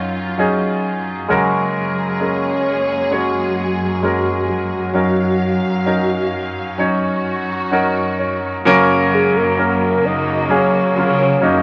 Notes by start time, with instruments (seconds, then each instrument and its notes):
Already playing: grand piano F#2 F#3 C#4 D#4 F4 A#4, string section F#2 F#3 C#4 F4
0.38 grand piano F#3 C#4 D#4 G#4
1.28 grand piano F#2 C#3 G#3 C#4 F#4 A#4, string section F#2 A#3 G#4
2.20 grand piano G#3 C#4 F#4 A#4, soft synth lead C#5
3.11 grand piano G#3 C#4 F#4 C#5, soft synth lead F#4
4.03 grand piano G#3 C#4 F#4 A#4
4.49 soft synth lead F#4
4.94 grand piano F#2 F#3 C#4 D#4 A#4, string section C#4 F5
5.85 grand piano F#3 C#4 D#4 A#4
6.78 grand piano F#3 C#4 D#4 C#5, string section F#4
7.71 grand piano F#3 C#4 D#4 A#4 F#5
8.19 grand piano C#5
8.65 cello section F#2, grand piano C#3 F#3 A#3 C#4 A#4, string section C#3 F#3 A#3
9.14 soft synth lead G#4
9.36 cello section F#2, soft synth lead A#4
9.57 grand piano F#3 A#3 C#4 A#4
10.04 cello section F#2, soft synth lead D#5
10.49 grand piano F#3 A#3 C#4 G#4, soft synth lead C#5
10.96 cello section C#3, grand piano F#3 A#3 C#4 F4
11.41 cello section F#2, grand piano F#3 A#3 C#4 D#4